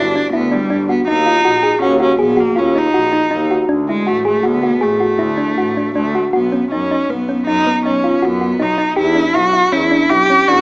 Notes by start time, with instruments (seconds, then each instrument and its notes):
Already playing: double bass G1, cello D4, synth pluck E4
0.16 synth pluck D4
0.33 double bass D2, cello B3, synth pluck E4
0.52 cello G3, synth pluck D4
0.70 double bass G1, synth pluck D4
0.89 cello B3, synth pluck F#4
1.07 double bass D#2, cello D#4, synth pluck D#4
1.26 synth pluck F4
1.44 double bass A#1, synth pluck F#4
1.63 synth pluck G#4
1.81 double bass D#2, cello C#4, synth pluck F#4
2.00 cello C#4, synth pluck F#4
2.18 double bass A#1, cello B3, synth pluck G#4
2.37 cello A#3, synth pluck F#4
2.56 double bass D#2, cello C#4, synth pluck F4
2.75 synth pluck D#4, cello D#4
2.93 double bass A#1, synth pluck F#4
3.12 synth pluck D#4
3.31 double bass D#2, synth pluck D#4
3.51 synth pluck F#4
3.67 double bass D2, synth pluck D4
3.88 cello G#3, synth pluck E4
4.05 double bass A1, cello A3, synth pluck F#4
4.25 cello A3, synth pluck G#4
4.43 double bass D2, cello B3, synth pluck F#4
4.63 synth pluck F#4
4.81 double bass A1, cello A3, synth pluck G#4
5.00 synth pluck F#4
5.18 double bass D2, synth pluck E4
5.37 synth pluck D4
5.57 double bass A1, synth pluck F#4
5.77 synth pluck D4
5.94 double bass D2, cello A3, synth pluck D4
6.15 synth pluck F#4
6.33 double bass B1, cello B3, synth pluck F#4
6.52 synth pluck C#4
6.70 double bass F#2, cello C#4, synth pluck D#4
6.91 synth pluck D#4
7.09 double bass B1, synth pluck B3, cello B3
7.29 synth pluck C#4
7.46 double bass F#2, cello D#4, synth pluck D#4
7.67 synth pluck B3
7.84 double bass B1, cello C#4, synth pluck D#4
8.04 synth pluck F4
8.22 double bass F#2, cello B3, synth pluck F#4
8.41 synth pluck F#4
8.59 double bass B1, synth pluck D#4, cello D#4
8.78 synth pluck D#4
8.96 double bass E2, cello E4, synth pluck G4
9.15 synth pluck D4
9.34 double bass B1, synth pluck E4, cello F#4
9.53 synth pluck E4
9.71 double bass E2, synth pluck C#4, cello E4
9.91 synth pluck D4
10.09 double bass B1, synth pluck E4, cello G4
10.30 synth pluck C#4
10.47 double bass E2, synth pluck D4, cello F#4